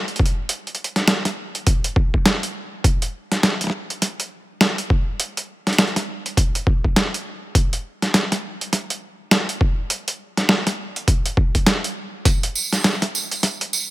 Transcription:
0.08 closed hi-hat
0.16 kick, closed hi-hat
0.26 closed hi-hat
0.49 closed hi-hat
0.67 closed hi-hat
0.75 closed hi-hat
0.84 closed hi-hat
0.96 snare, closed hi-hat
1.08 snare, closed hi-hat
1.25 snare, closed hi-hat
1.55 closed hi-hat
1.67 kick, closed hi-hat
1.84 closed hi-hat
1.96 kick
2.14 kick
2.26 snare, closed hi-hat
2.43 closed hi-hat
2.84 kick, closed hi-hat
3.02 closed hi-hat
3.32 snare, closed hi-hat
3.43 snare, closed hi-hat
3.61 snare, closed hi-hat
3.64 snare
3.67 snare
3.70 snare
3.90 closed hi-hat
4.02 snare, closed hi-hat
4.20 closed hi-hat
4.61 snare, closed hi-hat
4.78 closed hi-hat
4.90 kick
5.20 closed hi-hat
5.37 closed hi-hat
5.67 snare, closed hi-hat
5.73 closed hi-hat
5.78 snare, closed hi-hat
5.87 closed hi-hat
5.96 snare, closed hi-hat
6.26 closed hi-hat
6.37 kick, closed hi-hat
6.55 closed hi-hat
6.67 kick
6.84 kick
6.96 snare, closed hi-hat
7.14 closed hi-hat
7.55 kick, closed hi-hat
7.73 closed hi-hat
8.02 snare, closed hi-hat
8.14 snare, closed hi-hat
8.32 snare, closed hi-hat
8.61 closed hi-hat
8.73 snare, closed hi-hat
8.90 closed hi-hat
9.31 snare, closed hi-hat
9.49 closed hi-hat
9.61 kick
9.90 closed hi-hat
10.08 closed hi-hat
10.37 snare, closed hi-hat
10.49 snare
10.67 snare, closed hi-hat
10.96 closed hi-hat
11.08 kick, closed hi-hat
11.26 closed hi-hat
11.37 kick
11.55 kick, closed hi-hat
11.67 snare, closed hi-hat
11.84 closed hi-hat
12.25 kick, closed hi-hat, tambourine
12.43 closed hi-hat
12.55 tambourine
12.73 snare, closed hi-hat, tambourine
12.84 snare, closed hi-hat, tambourine
13.02 snare, closed hi-hat
13.15 tambourine
13.31 closed hi-hat, tambourine
13.43 snare, closed hi-hat, tambourine
13.61 closed hi-hat
13.73 tambourine

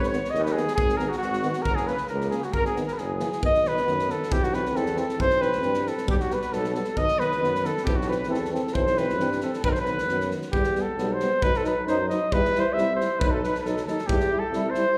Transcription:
Already playing: G#1
0.00 B4, snare
0.08 D#3 C#5
0.12 B3, snare
0.25 snare
0.29 D#2 D#5
0.35 snare
0.42 B4
0.46 snare
0.53 D#3 B3 G#4
0.57 snare
0.68 snare
0.75 G#1 G#4, kick
0.89 snare
0.96 D#3 B3 A#4, snare
1.09 F#4, snare
1.18 F#4
1.22 G#1, snare
1.33 snare
1.42 D#3 B3, snare
1.53 snare
1.62 A#4, kick
1.67 F#1
1.75 G#4, snare
1.85 C#3 A#3 B4, snare
1.98 snare
2.07 C#2 A#4, snare
2.21 snare
2.30 C#3 A#3 G#4, snare
2.41 F#4, snare
2.53 G#1 A#4, kick
2.64 G#4, snare
2.75 D#3 B3, snare
2.87 A#4, snare
2.92 A#4 B4
2.98 F#1 G#4, snare
3.19 E3 A#3, snare
3.32 snare
3.42 B1 D#3 B3 D#5, kick
3.55 snare
3.63 D#3 B3, snare
3.68 B4
3.77 snare
3.84 F#2 D#3 B3, snare
3.99 snare
4.06 D#3 B3, snare
4.11 A4
4.23 snare
4.29 B1 E3 C4 G4, kick
4.43 F#4, snare
4.51 E3 C4 B4, snare
4.66 snare
4.74 E2 E3 C4 A4, snare
4.86 snare
4.95 E3 C4, snare
5.00 A4
5.09 snare
5.16 B1 E3 C4, kick
5.21 C5
5.30 snare
5.39 E3 C4 B4, snare
5.52 snare
5.60 G2 E3 C4, snare
5.74 snare
5.83 E3 C4, snare
5.88 A4
5.98 snare
6.06 B1 G3 B3 G4, kick
6.11 G4
6.16 F#4 G4
6.20 F#4, snare
6.29 G3 B3 B4, snare
6.34 B4
6.42 snare
6.51 B1 G3 B3 A4, snare
6.64 snare
6.74 G3 B3 A4, snare
6.84 snare
6.95 B1 D#3 B3 D#5, kick
7.00 D#5
7.08 snare
7.18 D#3 B3 B4, snare
7.32 snare
7.40 F#2 D#3 B3, snare
7.55 snare
7.63 D#3 B3 A4, snare
7.77 snare
7.83 B1 E3 C4 G4 A4
7.87 kick
7.96 F#4
8.01 snare
8.06 E3 C4 B4
8.12 snare
8.23 E3, snare
8.29 E2 C4 A4
8.34 snare
8.45 snare
8.50 E3 C4 A4
8.55 snare
8.67 snare
8.74 B1 E3 C4 C5, kick
8.87 snare
8.96 E3 C4 B4, snare
9.10 snare
9.17 G2 E3 C4, snare
9.32 snare
9.41 E3 C4 A4, snare
9.54 snare
9.62 B1 D#3 B3 B4, kick
9.71 C5, snare
9.79 B4
9.86 D#3 B3, snare
9.98 snare
10.07 F#2 D#3 B3, snare
10.21 snare
10.29 D#3 B3, snare
10.42 snare
10.52 E2 G3 B3 G4, kick
10.64 snare
10.76 G3 B3, snare
10.82 A4
10.97 B1 G3 B3, snare
11.14 C5
11.20 G3 B3, snare
11.42 B1 F#3 D#4 B4, kick
11.54 A4, snare
11.64 F#3 D#4 B4, snare
11.87 F#2 F#3 D#4 C5, snare
12.09 F#3 D#4 D#5, snare
12.31 E2 G3 E4 B4, kick
12.45 snare
12.55 G3 E4, snare
12.60 C5
12.73 C2 G3 E5
12.78 E4, snare
12.96 G3 C5
13.00 E4, snare
13.19 B1 F#3 B4, kick
13.24 D#4
13.31 A4
13.41 F#3 B4, snare
13.45 D#4 B4
13.55 snare
13.63 B1 F#3 A4, snare
13.68 D#4
13.77 snare
13.85 D#2 F#3 D#4 A4, snare
13.99 snare
14.07 E2 G3 E4 G4, kick
14.20 snare
14.32 G3 E4
14.39 A4
14.51 C2 G3 E4, snare
14.69 C5
14.75 G3 E4, snare

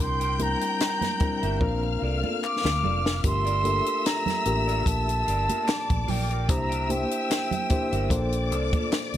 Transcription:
0.00 C2 G3 C4 D4 E4 A#4 G5 C6 G6, muted conga
0.20 G4 A#4 G5, closed hi-hat
0.39 G3 C4 D4 E4 A#4 A#5, muted clean electric guitar stroke, closed hi-hat, high conga
0.61 muted clean electric guitar stroke, closed hi-hat
0.80 snare, clap, closed hi-hat, muted conga
1.01 muted clean electric guitar stroke, snare, closed hi-hat, muted conga, high conga, low conga
1.20 G3 C4 D4 E4 A#4, muted fingered electric bass stroke, kick, closed hi-hat
1.42 G1 G4 A#4 E5, closed hi-hat
1.60 A#1 A#3 C4 D4 F4 A#4 F5 F6, muted clean electric guitar stroke, kick, muted conga
1.83 muted clean electric guitar stroke, muted conga
2.01 C2 F4 A4 D5
2.23 F4 A4 D5, high conga
2.42 D6, muted clean electric guitar stroke, clap
2.65 D2, snare, muted conga, high conga
2.83 F1 F4 A4 D5, low conga
3.05 muted clean electric guitar stroke, snare
3.24 G1 A3 D4 F4 G4 A#4 E5 C6 E6, muted clean electric guitar stroke, kick, closed hi-hat
3.45 F4 A#4 D5, closed hi-hat, muted conga
3.64 D4 F4 G4 A4 A#4, muted clean electric guitar stroke, closed hi-hat, high conga
3.86 muted clean electric guitar stroke, closed hi-hat
4.05 A#5, muted clean electric guitar stroke, snare, clap, closed hi-hat
4.26 muted clean electric guitar stroke, snare, closed hi-hat, high conga, low conga
4.45 A1 A#3 D4 F4 G4 A#4, closed hi-hat
4.67 F4 A#4 D5, closed hi-hat
4.86 A#1 A5, muted clean electric guitar stroke, kick, closed hi-hat
5.08 muted clean electric guitar stroke, closed hi-hat, muted conga
5.27 G1 F4 A#4 D5, closed hi-hat
5.48 F4 A#4 E5, closed hi-hat, high conga
5.67 D5 D6, muted clean electric guitar stroke, snare, clap, closed hi-hat, muted conga
5.89 A#1, muted clean electric guitar stroke, kick, closed hi-hat, muted conga, high conga
6.07 A#1 F4 A#4 D5 G5, open hi-hat, low conga
6.29 F4 A#4 D5, closed hi-hat
6.48 C2 A#3 D4 E4 G4 C5 E5 A#5 E6, muted clean electric guitar stroke, kick, closed hi-hat, muted conga
6.70 G4 A#4 G5, closed hi-hat
6.88 A#3 D4 E4 G4 C5 G5, muted clean electric guitar stroke, closed hi-hat, high conga
7.10 muted clean electric guitar stroke, closed hi-hat
7.29 muted clean electric guitar stroke, snare, clap, closed hi-hat, muted conga
7.51 muted clean electric guitar stroke, closed hi-hat, muted conga, high conga, low conga
7.70 A#3 D4 E4 G4 C5, muted fingered electric bass stroke, kick, closed hi-hat
7.91 G1 G4 A#4 E5, closed hi-hat
8.10 A#1 A#3 D4 F4 A4 C5 D5 D6, muted clean electric guitar stroke, kick, closed hi-hat, muted conga
8.32 muted clean electric guitar stroke, closed hi-hat
8.50 C2 F4 A4 D5, closed hi-hat
8.73 F4 A4 D5, kick, closed hi-hat, high conga
8.91 muted clean electric guitar stroke, snare, clap, closed hi-hat, muted conga
9.14 D2, closed hi-hat

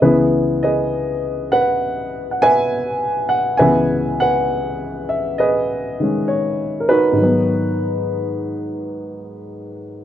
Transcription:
0.01 C#2 C#3 E3 B3 E4 G#4 B4
0.63 G#4 B4 D#5
1.52 B4 F#5
2.31 F#5
2.42 B4 E5 G#5
3.29 F#5
3.57 C#2 C#3 E3 B4 E5 G#5
3.62 B3
4.20 B4 F#5
5.09 E5
5.38 G#4 B4 D#5
6.00 D#3 G#3 C#4
6.28 C#5
6.80 A#4
6.89 D#4 F#4 B4
7.12 G#2
7.17 D#3 F#3
7.23 B3

